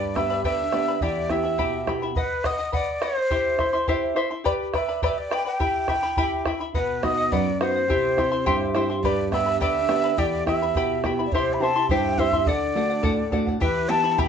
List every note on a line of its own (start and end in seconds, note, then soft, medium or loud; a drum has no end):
0.00 0.43 G2 medium
0.00 0.16 G4 medium
0.00 0.15 B4 medium
0.00 0.15 D5 medium
0.00 0.17 D5 medium
0.00 0.15 G5 medium
0.00 0.16 B5 medium
0.16 0.61 B3 soft
0.16 0.62 D4 soft
0.16 0.62 G4 soft
0.16 0.30 B4 soft
0.16 0.30 D5 medium
0.16 0.44 E5 medium
0.16 0.30 G5 soft
0.16 0.29 B5 medium
0.16 bombo rim soft
0.16 bombo low soft
0.30 0.44 B4 soft
0.30 0.44 D5 soft
0.30 0.44 B5 soft
0.44 1.00 D3 medium
0.44 0.73 G4 medium
0.44 0.72 B4 medium
0.44 0.72 D5 medium
0.44 1.04 E5 medium
0.44 0.71 G5 medium
0.44 0.72 B5 medium
0.44 bombo low medium
0.72 0.96 B3 soft
0.72 0.96 D4 soft
0.72 0.96 G4 soft
0.72 0.87 B4 medium
0.72 0.87 D5 medium
0.72 0.87 G5 soft
0.72 0.87 B5 medium
0.72 bombo rim soft
0.88 1.02 B4 soft
0.88 1.02 D5 soft
0.88 1.02 B5 soft
1.01 1.57 E2 medium
1.01 1.30 E4 medium
1.01 1.30 G4 medium
1.01 1.32 D5 medium
1.01 1.31 E5 medium
1.01 1.29 G5 medium
1.01 1.31 B5 medium
1.01 bombo low medium
1.30 1.76 B3 soft
1.30 1.76 E4 soft
1.30 1.44 E4 soft
1.30 1.76 G4 soft
1.30 1.88 E5 medium
1.30 1.44 E5 soft
1.30 1.45 G5 soft
1.30 1.43 B5 medium
1.30 bombo rim soft
1.30 bombo low soft
1.44 1.58 E4 soft
1.44 1.58 E5 soft
1.44 1.58 B5 soft
1.58 2.15 B2 medium
1.58 1.86 E4 medium
1.58 1.87 G4 medium
1.58 1.87 E5 medium
1.58 1.86 G5 medium
1.58 1.88 B5 medium
1.58 bombo low medium
1.87 2.10 B3 soft
1.87 2.10 E4 soft
1.87 2.02 E4 soft
1.87 2.10 G4 soft
1.87 2.02 E5 soft
1.87 2.02 G5 soft
1.87 2.01 B5 medium
1.87 bombo rim soft
1.87 bombo low soft
2.02 2.16 E4 soft
2.02 2.16 E5 soft
2.02 2.16 B5 soft
2.16 2.43 B4 medium
2.16 2.47 B4 medium
2.16 2.44 D#5 medium
2.16 2.44 F#5 medium
2.16 bombo low medium
2.44 2.59 B4 medium
2.44 2.59 D#5 medium
2.44 2.73 D#5 medium
2.44 2.58 F#5 medium
2.44 bombo rim soft
2.44 bombo low medium
2.59 2.72 D#5 soft
2.59 2.73 F#5 soft
2.72 3.00 B4 medium
2.72 3.04 D5 medium
2.72 3.01 D#5 medium
2.72 3.01 F#5 medium
2.72 bombo low medium
3.01 3.16 B4 medium
3.01 4.17 C5 medium
3.01 3.17 D#5 medium
3.01 3.15 F#5 medium
3.01 bombo rim medium
3.16 3.30 D#5 soft
3.16 3.30 F#5 soft
3.30 3.58 E4 medium
3.30 3.59 G4 medium
3.30 3.57 C5 medium
3.30 3.58 E5 medium
3.30 3.59 C6 medium
3.30 bombo low medium
3.58 3.74 E4 medium
3.58 3.73 C5 soft
3.58 3.73 E5 medium
3.58 3.72 C6 medium
3.58 bombo rim soft
3.58 bombo low medium
3.73 3.87 E4 soft
3.73 3.88 E5 medium
3.73 3.88 C6 medium
3.88 4.15 E4 medium
3.88 4.17 G4 medium
3.88 4.15 C5 medium
3.88 4.16 E5 medium
3.88 4.16 C6 medium
3.88 bombo low medium
4.16 4.31 E4 medium
4.16 4.31 C5 medium
4.16 4.30 E5 medium
4.16 4.29 C6 medium
4.16 bombo rim soft
4.31 4.45 E4 soft
4.31 4.45 E5 soft
4.31 4.45 C6 soft
4.44 4.74 G4 medium
4.44 4.73 B4 medium
4.44 4.52 D5 medium
4.44 4.73 D5 medium
4.44 4.73 G5 medium
4.44 4.74 B5 medium
4.44 bombo low medium
4.74 4.89 B4 medium
4.74 4.88 D5 medium
4.74 5.01 E5 medium
4.74 4.88 G5 medium
4.74 4.87 B5 medium
4.74 bombo rim soft
4.74 bombo low soft
4.89 5.02 B4 soft
4.89 5.02 D5 soft
4.89 5.03 B5 medium
5.02 5.31 G4 medium
5.02 5.30 B4 medium
5.02 5.31 D5 medium
5.02 5.20 E5 medium
5.02 5.30 G5 medium
5.02 5.31 B5 medium
5.02 bombo low medium
5.18 5.34 D5 medium
5.31 5.46 B4 medium
5.31 5.45 D5 medium
5.31 5.46 G5 medium
5.31 5.44 B5 medium
5.31 bombo rim medium
5.45 5.60 B4 soft
5.45 5.60 D5 soft
5.45 6.43 G5 medium
5.45 5.60 B5 soft
5.60 5.88 E4 medium
5.60 5.89 G4 medium
5.60 5.88 E5 medium
5.60 5.87 G5 medium
5.60 5.88 B5 medium
5.60 bombo low medium
5.88 6.03 E4 soft
5.88 6.03 E5 medium
5.88 6.03 G5 soft
5.88 6.02 B5 medium
5.88 bombo rim soft
5.88 bombo low medium
6.03 6.17 E4 soft
6.03 6.17 E5 soft
6.03 6.17 B5 soft
6.17 6.45 E4 medium
6.17 6.46 G4 medium
6.17 6.46 E5 medium
6.17 6.44 G5 medium
6.17 6.46 B5 medium
6.17 bombo low medium
6.45 6.61 E4 medium
6.45 6.60 E5 medium
6.45 6.60 G5 medium
6.45 6.59 B5 medium
6.45 bombo rim medium
6.45 bombo low soft
6.60 6.74 E4 soft
6.60 6.75 E5 soft
6.60 6.75 B5 soft
6.74 7.30 B2 medium
6.74 7.02 B4 medium
6.74 7.05 B4 medium
6.74 7.03 D#5 medium
6.74 7.03 F#5 medium
6.74 bombo low medium
7.03 7.49 B3 soft
7.03 7.49 D#4 soft
7.03 7.50 F#4 soft
7.03 7.18 B4 medium
7.03 7.33 D#5 medium
7.03 7.17 D#5 medium
7.03 7.16 F#5 medium
7.03 bombo rim soft
7.03 bombo low soft
7.17 7.31 D#5 soft
7.17 7.32 F#5 medium
7.32 7.88 F#2 medium
7.32 7.60 B4 medium
7.32 7.61 D5 medium
7.32 7.60 D#5 medium
7.32 7.61 F#5 medium
7.32 bombo low medium
7.60 7.83 B3 soft
7.60 7.84 D#4 soft
7.60 7.84 F#4 soft
7.60 7.75 B4 medium
7.60 8.72 C5 medium
7.60 7.76 D#5 medium
7.60 7.74 F#5 medium
7.60 bombo rim medium
7.75 7.89 D#5 soft
7.75 7.89 F#5 soft
7.88 8.44 C3 medium
7.88 8.17 E4 medium
7.88 8.18 G4 medium
7.88 8.17 E5 medium
7.88 8.17 G5 medium
7.88 8.18 C6 medium
7.88 bombo low medium
8.17 8.64 C4 soft
8.17 8.64 E4 soft
8.17 8.32 E4 medium
8.17 8.64 G4 soft
8.17 8.31 E5 medium
8.17 8.32 G5 soft
8.17 8.31 C6 medium
8.17 bombo rim soft
8.17 bombo low soft
8.32 8.45 E4 soft
8.32 8.46 E5 soft
8.32 8.46 C6 medium
8.46 9.01 G2 medium
8.46 8.75 E4 medium
8.46 8.75 G4 medium
8.46 8.73 E5 medium
8.46 8.75 E5 medium
8.46 8.74 G5 medium
8.46 8.75 C6 medium
8.46 bombo low medium
8.74 8.98 C4 soft
8.74 8.98 E4 soft
8.74 8.90 E4 medium
8.74 8.98 G4 medium
8.74 9.02 C5 medium
8.74 8.90 E5 medium
8.74 8.89 G5 medium
8.74 8.88 C6 medium
8.74 bombo rim soft
8.90 9.04 E4 soft
8.90 9.05 E5 soft
8.90 9.04 C6 soft
9.03 9.59 G2 medium
9.03 9.33 G4 medium
9.03 9.32 B4 medium
9.03 9.31 D5 medium
9.03 9.33 D5 medium
9.03 9.31 G5 medium
9.03 9.33 B5 medium
9.03 bombo low medium
9.31 9.78 B3 soft
9.31 9.78 D4 soft
9.31 9.78 G4 medium
9.31 9.47 B4 medium
9.31 9.46 D5 medium
9.31 9.59 E5 medium
9.31 9.47 G5 medium
9.31 9.45 B5 medium
9.31 bombo rim soft
9.31 bombo low soft
9.46 9.60 B4 soft
9.46 9.60 D5 soft
9.46 9.61 B5 medium
9.60 10.16 D3 medium
9.60 9.90 G4 medium
9.60 9.89 B4 medium
9.60 9.89 D5 medium
9.60 10.20 E5 medium
9.60 9.88 G5 medium
9.60 9.89 B5 medium
9.60 bombo low medium
9.88 10.12 B3 soft
9.88 10.12 D4 soft
9.88 10.12 G4 soft
9.88 10.04 B4 soft
9.88 10.03 D5 medium
9.88 10.04 G5 medium
9.88 10.03 B5 medium
9.88 bombo rim soft
10.04 10.18 B4 soft
10.04 10.18 D5 soft
10.04 10.18 B5 medium
10.17 10.73 E2 medium
10.17 10.46 E4 medium
10.17 10.47 G4 medium
10.17 10.47 D5 medium
10.17 10.47 E5 medium
10.17 10.46 G5 medium
10.17 10.47 B5 medium
10.17 bombo low medium
10.46 10.92 B3 soft
10.46 10.93 E4 soft
10.46 10.62 E4 medium
10.46 10.93 G4 soft
10.46 11.01 E5 medium
10.46 10.62 E5 medium
10.46 10.61 G5 medium
10.46 10.61 B5 medium
10.46 bombo rim soft
10.46 bombo low soft
10.62 10.76 E4 soft
10.62 10.76 E5 soft
10.62 10.76 B5 medium
10.75 11.31 B2 medium
10.75 11.04 E4 medium
10.75 11.05 G4 medium
10.75 11.04 E5 medium
10.75 11.03 G5 medium
10.75 11.05 B5 medium
10.75 bombo low medium
11.03 11.27 B3 soft
11.03 11.27 E4 soft
11.03 11.19 E4 medium
11.03 11.27 G4 soft
11.03 11.18 E5 medium
11.03 11.19 G5 medium
11.03 11.18 B5 medium
11.03 bombo rim soft
11.03 bombo low soft
11.19 11.33 E4 soft
11.19 11.33 E5 soft
11.19 11.33 B5 soft
11.26 11.34 D5 medium
11.32 11.88 C3 medium
11.32 11.62 E4 medium
11.32 11.62 G4 medium
11.32 11.55 C5 medium
11.32 11.61 C5 medium
11.32 11.62 E5 medium
11.32 bombo low medium
11.36 11.62 C6 medium
11.53 11.63 B5 medium
11.60 12.06 C4 soft
11.60 12.06 E4 soft
11.60 11.76 E4 medium
11.60 12.07 G4 soft
11.60 11.76 C5 medium
11.60 11.75 E5 medium
11.60 11.89 A5 medium
11.60 11.75 C6 medium
11.76 11.90 E4 soft
11.76 11.90 E5 soft
11.76 11.90 C6 medium
11.89 12.45 G2 medium
11.89 12.18 E4 medium
11.89 12.19 G4 medium
11.89 12.18 C5 medium
11.89 12.19 E5 medium
11.89 12.20 G5 medium
11.89 12.19 C6 medium
11.89 bombo low medium
12.18 12.41 C4 soft
12.18 12.41 E4 soft
12.18 12.33 E4 medium
12.18 12.41 G4 medium
12.18 12.33 C5 medium
12.18 12.49 E5 medium
12.18 12.33 E5 medium
12.18 12.32 C6 medium
12.18 bombo low medium
12.32 12.47 E4 soft
12.32 12.48 E5 soft
12.32 12.47 C6 soft
12.32 bombo low medium
12.46 13.02 D3 medium
12.46 12.75 A4 medium
12.46 13.33 D5 medium
12.46 12.75 D5 medium
12.46 12.76 F#5 medium
12.46 bombo low medium
12.75 13.21 A3 soft
12.75 13.21 D4 soft
12.75 13.21 F#4 medium
12.75 12.90 A4 medium
12.75 12.90 D5 soft
12.75 12.88 F#5 medium
12.90 13.02 D5 soft
12.90 13.03 F#5 medium
13.03 13.59 A2 medium
13.03 13.31 A4 medium
13.03 13.32 D5 medium
13.03 13.32 F#5 medium
13.03 bombo low medium
13.32 13.55 A3 soft
13.32 13.55 D4 soft
13.32 13.55 F#4 medium
13.32 13.47 A4 medium
13.32 13.47 D5 medium
13.32 13.46 F#5 medium
13.32 bombo low medium
13.47 13.60 D5 soft
13.47 13.61 F#5 soft
13.47 bombo low medium
13.60 14.16 E3 medium
13.60 13.88 E4 medium
13.60 13.90 G4 medium
13.60 13.91 B4 medium
13.60 13.89 E5 medium
13.60 13.88 G5 medium
13.60 13.89 B5 medium
13.60 bombo low medium
13.89 14.28 B3 soft
13.89 14.04 E4 medium
13.89 14.28 E4 soft
13.89 14.28 G4 medium
13.89 14.04 E5 medium
13.89 14.04 G5 medium
13.89 14.11 A5 loud
13.89 14.03 B5 medium
14.04 14.17 E4 soft
14.04 14.18 E5 soft
14.04 14.18 B5 medium
14.11 14.21 A5 medium
14.18 14.28 B2 medium
14.18 14.28 E4 medium
14.18 14.28 G4 medium
14.18 14.28 E5 medium
14.18 14.28 G5 medium
14.18 14.28 B5 medium
14.18 bombo low medium